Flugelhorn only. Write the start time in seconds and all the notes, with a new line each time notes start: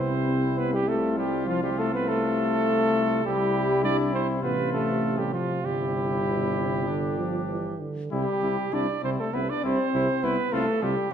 Already playing: C5
0.58 B4
0.73 G4
0.88 A4
1.18 G4
1.49 F4
1.64 G4
1.79 A4
1.94 B4
2.09 A4
3.26 G4
3.84 D5
4.14 C5
4.44 B4
4.73 A4
5.18 G4
5.34 F4
5.65 G4
8.12 G4
8.74 D5
9.04 C5
9.19 A4
9.34 B4
9.50 D5
9.65 C5
10.24 B4
10.53 A4
10.83 G4